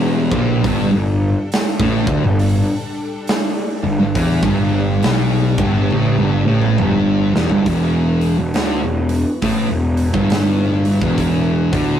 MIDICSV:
0, 0, Header, 1, 5, 480
1, 0, Start_track
1, 0, Key_signature, 1, "minor"
1, 0, Tempo, 878477
1, 347, Time_signature, 4, 2, 24, 8
1, 6555, End_track
2, 0, Start_track
2, 0, Title_t, "String machine"
2, 0, Program_c, 0, 50
2, 0, Note_on_c, 0, 52, 90
2, 0, Note_on_c, 0, 67, 91
2, 0, Note_on_c, 0, 71, 75
2, 326, Note_off_c, 0, 52, 0
2, 326, Note_off_c, 0, 71, 0
2, 335, Note_off_c, 0, 67, 0
2, 357, Note_on_c, 0, 62, 81
2, 358, Note_on_c, 0, 69, 88
2, 361, Note_on_c, 0, 55, 77
2, 2254, Note_off_c, 0, 69, 0
2, 2277, Note_on_c, 0, 67, 90
2, 4173, Note_off_c, 0, 62, 0
2, 4175, Note_off_c, 0, 55, 0
2, 4175, Note_off_c, 0, 67, 0
2, 4186, Note_on_c, 0, 52, 87
2, 4188, Note_on_c, 0, 59, 73
2, 4189, Note_on_c, 0, 66, 84
2, 6555, Note_off_c, 0, 52, 0
2, 6555, Note_off_c, 0, 59, 0
2, 6555, Note_off_c, 0, 66, 0
2, 6555, End_track
3, 0, Start_track
3, 0, Title_t, "Distorted electric guitar"
3, 0, Program_c, 1, 30
3, 0, Note_on_c, 1, 40, 105
3, 163, Note_off_c, 1, 40, 0
3, 179, Note_on_c, 1, 46, 124
3, 347, Note_off_c, 1, 46, 0
3, 357, Note_on_c, 1, 43, 104
3, 494, Note_off_c, 1, 43, 0
3, 508, Note_on_c, 1, 43, 80
3, 707, Note_off_c, 1, 43, 0
3, 986, Note_on_c, 1, 45, 112
3, 1123, Note_off_c, 1, 45, 0
3, 1138, Note_on_c, 1, 50, 84
3, 1217, Note_off_c, 1, 50, 0
3, 1231, Note_on_c, 1, 43, 72
3, 1404, Note_off_c, 1, 43, 0
3, 2096, Note_on_c, 1, 43, 91
3, 2180, Note_off_c, 1, 43, 0
3, 2187, Note_on_c, 1, 43, 78
3, 2272, Note_off_c, 1, 43, 0
3, 2273, Note_on_c, 1, 52, 109
3, 2412, Note_off_c, 1, 52, 0
3, 2424, Note_on_c, 1, 43, 109
3, 2746, Note_off_c, 1, 43, 0
3, 2751, Note_on_c, 1, 47, 117
3, 3043, Note_off_c, 1, 47, 0
3, 3051, Note_on_c, 1, 43, 92
3, 3224, Note_off_c, 1, 43, 0
3, 3230, Note_on_c, 1, 45, 114
3, 3371, Note_off_c, 1, 45, 0
3, 3374, Note_on_c, 1, 43, 91
3, 3519, Note_off_c, 1, 43, 0
3, 3528, Note_on_c, 1, 45, 95
3, 3703, Note_off_c, 1, 45, 0
3, 3710, Note_on_c, 1, 43, 106
3, 4002, Note_off_c, 1, 43, 0
3, 4016, Note_on_c, 1, 40, 117
3, 4098, Note_off_c, 1, 40, 0
3, 4103, Note_on_c, 1, 43, 106
3, 4186, Note_off_c, 1, 43, 0
3, 4190, Note_on_c, 1, 40, 111
3, 4575, Note_off_c, 1, 40, 0
3, 4583, Note_on_c, 1, 40, 79
3, 4671, Note_off_c, 1, 40, 0
3, 4674, Note_on_c, 1, 50, 110
3, 4813, Note_off_c, 1, 50, 0
3, 4821, Note_on_c, 1, 40, 70
3, 5025, Note_off_c, 1, 40, 0
3, 5151, Note_on_c, 1, 45, 104
3, 5292, Note_off_c, 1, 45, 0
3, 5305, Note_on_c, 1, 40, 60
3, 5507, Note_off_c, 1, 40, 0
3, 5546, Note_on_c, 1, 43, 101
3, 6017, Note_off_c, 1, 43, 0
3, 6025, Note_on_c, 1, 40, 93
3, 6402, Note_off_c, 1, 40, 0
3, 6412, Note_on_c, 1, 50, 104
3, 6555, Note_off_c, 1, 50, 0
3, 6555, End_track
4, 0, Start_track
4, 0, Title_t, "Picked electric bass"
4, 0, Program_c, 2, 34
4, 0, Note_on_c, 2, 28, 108
4, 148, Note_off_c, 2, 28, 0
4, 170, Note_on_c, 2, 34, 104
4, 336, Note_off_c, 2, 34, 0
4, 350, Note_on_c, 2, 31, 99
4, 489, Note_off_c, 2, 31, 0
4, 504, Note_on_c, 2, 31, 76
4, 724, Note_off_c, 2, 31, 0
4, 982, Note_on_c, 2, 33, 101
4, 1120, Note_off_c, 2, 33, 0
4, 1132, Note_on_c, 2, 38, 99
4, 1213, Note_off_c, 2, 38, 0
4, 1224, Note_on_c, 2, 31, 91
4, 1444, Note_off_c, 2, 31, 0
4, 2094, Note_on_c, 2, 31, 91
4, 2175, Note_off_c, 2, 31, 0
4, 2183, Note_on_c, 2, 31, 78
4, 2264, Note_off_c, 2, 31, 0
4, 2268, Note_on_c, 2, 40, 90
4, 2408, Note_off_c, 2, 40, 0
4, 2418, Note_on_c, 2, 31, 108
4, 2726, Note_off_c, 2, 31, 0
4, 2752, Note_on_c, 2, 35, 94
4, 3031, Note_off_c, 2, 35, 0
4, 3049, Note_on_c, 2, 31, 109
4, 3216, Note_off_c, 2, 31, 0
4, 3230, Note_on_c, 2, 33, 97
4, 3370, Note_off_c, 2, 33, 0
4, 3376, Note_on_c, 2, 31, 98
4, 3518, Note_off_c, 2, 31, 0
4, 3525, Note_on_c, 2, 33, 106
4, 3694, Note_off_c, 2, 33, 0
4, 3705, Note_on_c, 2, 31, 107
4, 3988, Note_off_c, 2, 31, 0
4, 4009, Note_on_c, 2, 28, 103
4, 4093, Note_off_c, 2, 28, 0
4, 4098, Note_on_c, 2, 31, 93
4, 4182, Note_off_c, 2, 31, 0
4, 4187, Note_on_c, 2, 28, 93
4, 4558, Note_off_c, 2, 28, 0
4, 4577, Note_on_c, 2, 28, 74
4, 4662, Note_off_c, 2, 28, 0
4, 4667, Note_on_c, 2, 38, 100
4, 4809, Note_off_c, 2, 38, 0
4, 4817, Note_on_c, 2, 28, 80
4, 5042, Note_off_c, 2, 28, 0
4, 5149, Note_on_c, 2, 33, 90
4, 5290, Note_off_c, 2, 33, 0
4, 5294, Note_on_c, 2, 28, 80
4, 5520, Note_off_c, 2, 28, 0
4, 5538, Note_on_c, 2, 31, 84
4, 5996, Note_off_c, 2, 31, 0
4, 6020, Note_on_c, 2, 28, 81
4, 6387, Note_off_c, 2, 28, 0
4, 6407, Note_on_c, 2, 38, 96
4, 6555, Note_off_c, 2, 38, 0
4, 6555, End_track
5, 0, Start_track
5, 0, Title_t, "Drums"
5, 172, Note_on_c, 9, 36, 106
5, 227, Note_off_c, 9, 36, 0
5, 351, Note_on_c, 9, 36, 104
5, 351, Note_on_c, 9, 46, 56
5, 405, Note_off_c, 9, 46, 0
5, 406, Note_off_c, 9, 36, 0
5, 829, Note_on_c, 9, 46, 66
5, 840, Note_on_c, 9, 38, 123
5, 884, Note_off_c, 9, 46, 0
5, 894, Note_off_c, 9, 38, 0
5, 981, Note_on_c, 9, 36, 113
5, 1036, Note_off_c, 9, 36, 0
5, 1132, Note_on_c, 9, 36, 123
5, 1186, Note_off_c, 9, 36, 0
5, 1307, Note_on_c, 9, 46, 70
5, 1362, Note_off_c, 9, 46, 0
5, 1789, Note_on_c, 9, 46, 64
5, 1799, Note_on_c, 9, 38, 118
5, 1843, Note_off_c, 9, 46, 0
5, 1854, Note_off_c, 9, 38, 0
5, 2269, Note_on_c, 9, 36, 105
5, 2271, Note_on_c, 9, 46, 63
5, 2324, Note_off_c, 9, 36, 0
5, 2325, Note_off_c, 9, 46, 0
5, 2419, Note_on_c, 9, 36, 116
5, 2474, Note_off_c, 9, 36, 0
5, 2745, Note_on_c, 9, 46, 60
5, 2756, Note_on_c, 9, 38, 112
5, 2800, Note_off_c, 9, 46, 0
5, 2810, Note_off_c, 9, 38, 0
5, 3050, Note_on_c, 9, 36, 126
5, 3104, Note_off_c, 9, 36, 0
5, 3228, Note_on_c, 9, 48, 66
5, 3283, Note_off_c, 9, 48, 0
5, 3378, Note_on_c, 9, 48, 60
5, 3433, Note_off_c, 9, 48, 0
5, 3615, Note_on_c, 9, 47, 71
5, 3670, Note_off_c, 9, 47, 0
5, 3706, Note_on_c, 9, 45, 90
5, 3761, Note_off_c, 9, 45, 0
5, 4020, Note_on_c, 9, 38, 106
5, 4074, Note_off_c, 9, 38, 0
5, 4095, Note_on_c, 9, 43, 91
5, 4150, Note_off_c, 9, 43, 0
5, 4184, Note_on_c, 9, 46, 67
5, 4187, Note_on_c, 9, 36, 86
5, 4239, Note_off_c, 9, 46, 0
5, 4241, Note_off_c, 9, 36, 0
5, 4487, Note_on_c, 9, 46, 60
5, 4542, Note_off_c, 9, 46, 0
5, 4666, Note_on_c, 9, 46, 73
5, 4676, Note_on_c, 9, 38, 115
5, 4721, Note_off_c, 9, 46, 0
5, 4731, Note_off_c, 9, 38, 0
5, 4967, Note_on_c, 9, 46, 71
5, 5022, Note_off_c, 9, 46, 0
5, 5147, Note_on_c, 9, 46, 82
5, 5149, Note_on_c, 9, 36, 97
5, 5202, Note_off_c, 9, 46, 0
5, 5204, Note_off_c, 9, 36, 0
5, 5448, Note_on_c, 9, 46, 56
5, 5503, Note_off_c, 9, 46, 0
5, 5540, Note_on_c, 9, 36, 108
5, 5594, Note_off_c, 9, 36, 0
5, 5628, Note_on_c, 9, 46, 89
5, 5639, Note_on_c, 9, 38, 126
5, 5683, Note_off_c, 9, 46, 0
5, 5693, Note_off_c, 9, 38, 0
5, 5928, Note_on_c, 9, 46, 65
5, 5983, Note_off_c, 9, 46, 0
5, 6019, Note_on_c, 9, 36, 103
5, 6074, Note_off_c, 9, 36, 0
5, 6108, Note_on_c, 9, 36, 93
5, 6109, Note_on_c, 9, 46, 76
5, 6163, Note_off_c, 9, 36, 0
5, 6164, Note_off_c, 9, 46, 0
5, 6409, Note_on_c, 9, 36, 106
5, 6410, Note_on_c, 9, 46, 66
5, 6463, Note_off_c, 9, 36, 0
5, 6464, Note_off_c, 9, 46, 0
5, 6555, End_track
0, 0, End_of_file